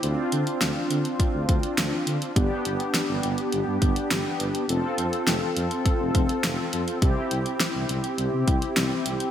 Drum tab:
HH |x-xxx-xxx-xxx-xx|x-xxx-xxx-xxx-xx|x-xxx-xxx-xxx-xx|x-xxx-xxx-xxx-xx|
SD |----o-------o---|----o-------o---|----o-------o---|----o-------o---|
BD |--------o-o-----|o---------o-----|--------o-o-----|o---------o-----|